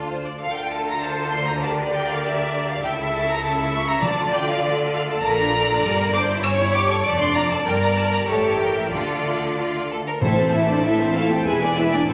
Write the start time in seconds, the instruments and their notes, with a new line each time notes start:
Already playing: double bass section D2, viola section D4, violin section F4
0.09 violin section C5
0.26 violin section D5
0.40 double bass section D2, cello section D3, violin section F4 A4 F5
0.56 violin section G5
0.71 violin section A5
0.87 violin section A#5
1.01 viola section C5, violin section A5
1.31 violin section C6
1.48 violin section A#5
1.63 violin section G4 A#4 A5, viola section D5
1.92 violin section G5
2.09 violin section F5
2.24 violin section E5
2.69 violin section F5
2.83 double bass section C#2, cello section C#3, violin section E4 A4 G5, viola section E5
3.15 violin section A5
3.30 violin section A#5
3.43 viola section E5, violin section A5
3.74 violin section C#6
3.90 violin section A#5
4.02 double bass section D2, timpani D3, cello section D3, violin section F4 D5 A5, viola section D5
4.33 violin section G5
4.49 violin section F5
4.62 viola section A4, violin section D5
4.94 violin section F5
5.10 violin section A5
5.23 double bass section A#1, cello section A#2, violin section A#3 D5 A#5
5.39 violin section D4
5.54 violin section F4
5.68 violin section D4
5.83 double bass section G1, cello section G2, violin section G3, viola section A#4
5.99 violin section A#3
6.13 violin section D4 D6, viola section C5
6.29 violin section E4
6.43 violin section C#4 C#5 E6, viola section C#5
6.59 violin section E4
6.74 violin section G4 D6
6.89 violin section A4 C#6
7.04 double bass section F1, cello section F2, violin section A3 D5 D6, viola section D5
7.20 violin section D4 C6
7.35 violin section F4 A#5
7.51 violin section A4 A5
7.66 double bass section G1, cello section G2, viola section A#4, violin section A#4 D5 G5
7.83 violin section A#5
7.97 violin section A5
8.13 violin section A#5
8.28 double bass section A1, cello section A2, violin section G4 C#5 A5, viola section A4
8.59 violin section A#4 G5
8.76 violin section E5
8.92 double bass section D2, cello section D3, viola section F4, violin section F4 A4 D5
9.58 violin section F4
9.91 violin section A4
10.07 violin section A#4
10.21 double bass section A1, cello section A2, timpani A2, viola section A3 E4, french horn section C4, violin section A4 C5 E5
10.38 viola section C4 A4, violin section C5 A5
10.53 viola section A3 E4, french horn section E4, violin section A4 E5
10.68 viola section C4 A4, french horn section D4, violin section C5 D5 A5
10.83 viola section A3 E4, french horn section E4, violin section A4 E5
10.99 viola section C4 A4, violin section C5 A5
11.14 viola section A3 E4, french horn section F4, violin section A4 E5 F5
11.30 viola section C4 A4, french horn section G4, violin section C5 G5 A5
11.45 double bass section E1, cello section E2, viola section G#3 E4, french horn section G#4, violin section B4 E5 G#5
11.61 viola section B3 D4, violin section D5 G#5
11.76 viola section G#3 E4, french horn section E4, violin section B4 E5
11.92 viola section B3 D4, french horn section D4, violin section D5 G#5
12.07 double bass section A1, cello section A2, viola section C4 E4, french horn section C4, violin section A4 C5 E5